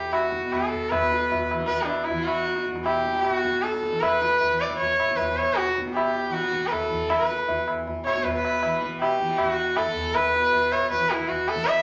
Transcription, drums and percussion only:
0.13 tabla na medium
0.32 tabla ke medium
0.53 tabla na medium
0.53 tabla ge medium
0.72 tabla ge soft
0.92 tabla na medium
0.92 tabla ge medium
1.12 tabla te medium
1.32 tabla tin medium
1.32 tabla ge medium
1.51 tabla na medium
1.61 tabla ke medium
1.69 tabla tin medium
1.69 tabla ge medium
1.89 tabla na medium
2.08 tabla tin medium
2.08 tabla ge medium
2.27 tabla na medium
2.46 tabla te medium
2.56 tabla te medium
2.66 tabla ke medium
2.76 tabla te medium
2.86 tabla na medium
3.05 tabla ke medium
3.15 tabla te medium
3.24 tabla na medium
3.45 tabla ke medium
3.64 tabla te medium
3.74 tabla te medium
3.83 tabla ke medium
3.93 tabla te medium
4.03 tabla na loud
4.03 tabla ge medium
4.22 tabla te medium
4.41 tabla tin medium
4.41 tabla ge medium
4.61 tabla na medium
4.71 tabla ke medium
4.80 tabla tin medium
4.80 tabla ge medium
5.00 tabla na medium
5.09 tabla ke medium
5.19 tabla tin medium
5.19 tabla ge medium
5.39 tabla na medium
5.58 tabla te medium
5.68 tabla te medium
5.78 tabla ke medium
5.88 tabla te medium
5.97 tabla na medium
6.16 tabla te medium
6.34 tabla te medium
6.44 tabla te medium
6.53 tabla ke medium
6.62 tabla te medium
6.72 tabla na medium
6.72 tabla ge medium
6.91 tabla ge medium
7.10 tabla na loud
7.10 tabla ge medium
7.29 tabla te medium
7.48 tabla tin medium
7.48 tabla ge medium
7.68 tabla na medium
7.87 tabla tin medium
7.87 tabla ge medium
8.07 tabla na medium
8.16 tabla ke medium
8.25 tabla tin medium
8.25 tabla ge medium
8.45 tabla na medium
8.63 tabla na medium
8.82 tabla ke medium
9.02 tabla na medium
9.20 tabla ke medium
9.29 tabla te medium
9.38 tabla na medium
9.38 tabla ge medium
9.58 tabla te soft
9.77 tabla na medium
9.77 tabla ge medium
9.95 tabla ge medium
10.15 tabla na loud
10.15 tabla ge medium
10.34 tabla te medium
10.53 tabla tin medium
10.53 tabla ge medium
10.72 tabla na medium
10.90 tabla tin medium
10.90 tabla ge medium
11.10 tabla na medium
11.19 tabla ke medium
11.29 tabla tin medium
11.29 tabla ge medium
11.47 tabla na medium
11.56 tabla ke medium
11.66 tabla na medium

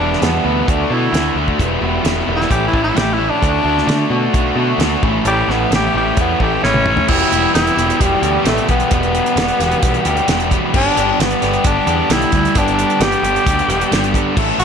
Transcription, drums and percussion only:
0.13 snare soft
0.22 snare loud
0.22 closed hi-hat medium
0.68 kick loud
0.68 closed hi-hat medium
1.14 snare loud
1.14 closed hi-hat medium
1.48 kick medium
1.59 kick medium
1.59 closed hi-hat medium
2.05 snare loud
2.05 closed hi-hat medium
2.41 snare soft
2.51 kick loud
2.51 closed hi-hat medium
2.73 kick medium
2.97 snare loud
2.97 closed hi-hat medium
3.42 kick loud
3.42 closed hi-hat medium
3.78 snare soft
3.89 snare loud
3.89 closed hi-hat medium
4.34 kick loud
4.34 closed hi-hat medium
4.80 snare loud
4.80 closed hi-hat medium
5.03 kick loud
5.25 closed hi-hat medium
5.50 snare soft
5.72 snare loud
5.72 closed hi-hat medium
6.17 kick loud
6.17 closed hi-hat medium
6.40 kick medium
6.64 snare medium
6.74 high tom medium
6.86 mid tom medium
6.97 floor tom medium
7.08 kick loud
7.08 crash loud
7.32 closed hi-hat medium
7.55 snare loud
7.55 closed hi-hat loud
7.67 closed hi-hat soft
7.78 closed hi-hat medium
7.90 closed hi-hat soft
8.01 kick loud
8.01 closed hi-hat medium
8.23 closed hi-hat medium
8.46 snare loud
8.46 closed hi-hat medium
8.58 closed hi-hat soft
8.69 kick loud
8.69 closed hi-hat medium
8.80 closed hi-hat soft
8.91 kick loud
8.91 closed hi-hat medium
9.03 closed hi-hat soft
9.15 closed hi-hat medium
9.26 closed hi-hat soft
9.37 snare loud
9.37 closed hi-hat medium
9.48 closed hi-hat soft
9.60 snare soft
9.60 closed hi-hat medium
9.71 closed hi-hat soft
9.83 kick loud
9.83 closed hi-hat loud
9.94 closed hi-hat soft
10.05 closed hi-hat medium
10.17 closed hi-hat soft
10.28 snare loud
10.28 closed hi-hat loud
10.40 closed hi-hat medium
10.51 kick medium
10.51 closed hi-hat medium
10.74 kick loud
10.74 crash loud
10.97 closed hi-hat medium
11.20 snare loud
11.20 closed hi-hat medium
11.31 closed hi-hat medium
11.42 snare soft
11.42 closed hi-hat medium
11.53 closed hi-hat soft
11.64 kick loud
11.64 closed hi-hat loud
11.87 closed hi-hat medium
12.10 snare loud
12.10 closed hi-hat loud
12.22 closed hi-hat soft
12.32 kick medium
12.32 closed hi-hat medium
12.45 closed hi-hat soft
12.55 kick loud
12.55 closed hi-hat medium
12.68 closed hi-hat soft
12.79 closed hi-hat medium
12.90 closed hi-hat soft
13.01 snare loud
13.01 closed hi-hat loud
13.12 closed hi-hat soft
13.24 closed hi-hat medium
13.36 closed hi-hat soft
13.47 kick loud
13.47 closed hi-hat loud
13.59 closed hi-hat soft
13.70 closed hi-hat medium
13.81 closed hi-hat soft
13.92 snare loud
13.92 closed hi-hat medium
14.04 closed hi-hat medium
14.14 kick medium
14.14 closed hi-hat medium
14.37 kick loud
14.37 crash loud
14.60 closed hi-hat medium

